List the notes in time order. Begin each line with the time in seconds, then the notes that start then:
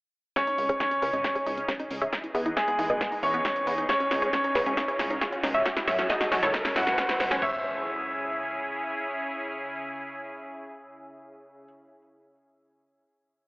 0.36 C#3 C#4 D#4 G#4 C#5, kick, snare, closed hi-hat, riser
0.47 C#4 D#4, closed hi-hat
0.58 C#2 C#4, open hi-hat
0.69 C#4 G#4 C#5, closed hi-hat
0.80 C#4 D#4 C#5, kick, snare, closed hi-hat
0.91 C#4, closed hi-hat
1.02 C#2 C#4 G#4 B4, open hi-hat
1.13 G#1 C#4 D#4, closed hi-hat
1.24 kick, snare, closed hi-hat
1.35 C#4 G#4 C#5, closed hi-hat
1.46 C#2 C#4 D#4, open hi-hat
1.57 C#4, closed hi-hat
1.68 C#4 G#4 C#5, kick, snare, closed hi-hat
1.80 C#4 D#4, closed hi-hat
1.91 C#2 C#4, open hi-hat
2.02 C#4 G#4 E5, closed hi-hat
2.13 E3 B3 D#4 E4, kick, snare, closed hi-hat
2.24 E4, closed hi-hat
2.35 E2 B3 G#4 E5, open hi-hat
2.46 D#4 E4, closed hi-hat
2.57 G#3 G#4 E5, kick, snare, closed hi-hat
2.68 B3 E4, closed hi-hat
2.79 E2 D#4 E4, kick, open hi-hat
2.90 B1 B4 D#5, closed hi-hat
3.01 B3, kick, snare, closed hi-hat
3.12 D#4, open hi-hat
3.23 E2 C#4 C#5, open hi-hat
3.34 B3, closed hi-hat
3.45 D#4, kick, snare, closed hi-hat
3.56 closed hi-hat
3.67 E2 B3, open hi-hat
3.78 D#4, closed hi-hat
3.89 C#3 C#4 G#4 C#5, kick, snare, closed hi-hat
4.00 C#4, closed hi-hat
4.11 C#2 C#4 D#4, snare, open hi-hat
4.22 G#4 C#5, closed hi-hat
4.33 C#4 C#5, kick, snare, closed hi-hat
4.44 C#4 D#4, closed hi-hat
4.55 C#2 G#4 B4, snare, open hi-hat
4.66 G#1 C#4, closed hi-hat
4.77 C#4 D#4, kick, snare, closed hi-hat
4.88 G#4 C#5, closed hi-hat
4.99 C#2 C#4, snare, open hi-hat
5.10 C#4 D#4, closed hi-hat
5.21 G#4 C#5, kick, snare, closed hi-hat
5.32 C#4, closed hi-hat
5.43 C#2 C#4 D#4, snare, open hi-hat
5.54 C#5 E5, closed hi-hat
5.65 E3 F#3 C#4 F#4 A4, kick, snare, closed hi-hat
5.77 E4 F#4, snare, closed hi-hat
5.88 F#2 C#5 E5, snare, open hi-hat
5.99 C#4 F#4, snare, closed hi-hat
6.10 D#4 E4 F#4 D#5, kick, snare, closed hi-hat
6.21 F#4, snare, closed hi-hat
6.32 F#2 C#4 F#4, kick, snare, open hi-hat
6.43 C#2 E4 A4 C#5, snare, closed hi-hat
6.54 kick, snare, closed hi-hat
6.65 C#4, snare, open hi-hat
6.76 F#2 E4 F#4 F#5, snare, open hi-hat
6.87 snare, closed hi-hat
6.98 C#4, kick, snare, closed hi-hat
7.09 E4, snare, closed hi-hat
7.20 F#1, snare, open hi-hat
7.31 C#4, snare
7.42 C#2 C#3 C#4 E4 G#4 C#5 E5, kick, floor tom, crash, impact